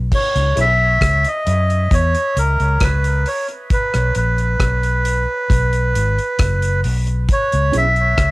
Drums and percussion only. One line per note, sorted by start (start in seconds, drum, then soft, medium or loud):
0.12 kick loud
0.12 crash medium
0.12 low conga medium
0.36 closed hi-hat medium
0.57 closed hi-hat medium
0.57 low conga medium
1.01 kick medium
1.01 cross-stick loud
1.01 closed hi-hat medium
1.25 closed hi-hat soft
1.47 closed hi-hat medium
1.47 high conga soft
1.70 closed hi-hat soft
1.91 kick loud
1.91 closed hi-hat medium
1.91 low conga medium
2.15 closed hi-hat soft
2.36 closed hi-hat medium
2.36 low conga medium
2.60 closed hi-hat soft
2.80 kick loud
2.80 cross-stick loud
2.80 closed hi-hat medium
3.04 closed hi-hat soft
3.26 open hi-hat medium
3.26 high conga medium
3.49 closed hi-hat soft
3.70 kick loud
3.70 closed hi-hat medium
3.94 cross-stick medium
3.94 closed hi-hat soft
4.15 closed hi-hat medium
4.15 low conga medium
4.38 closed hi-hat soft
4.60 kick loud
4.60 cross-stick loud
4.60 closed hi-hat medium
4.83 closed hi-hat soft
5.05 closed hi-hat medium
5.50 kick loud
5.50 closed hi-hat loud
5.50 low conga medium
5.73 closed hi-hat soft
5.73 high conga medium
5.95 closed hi-hat medium
5.95 low conga medium
6.18 closed hi-hat soft
6.39 kick loud
6.39 cross-stick loud
6.39 closed hi-hat medium
6.62 closed hi-hat medium
6.84 open hi-hat medium
6.84 high conga medium
7.07 closed hi-hat soft
7.29 kick loud
7.29 closed hi-hat medium
7.52 closed hi-hat medium
7.73 closed hi-hat medium
7.96 closed hi-hat soft
8.18 kick medium
8.18 cross-stick loud
8.18 closed hi-hat medium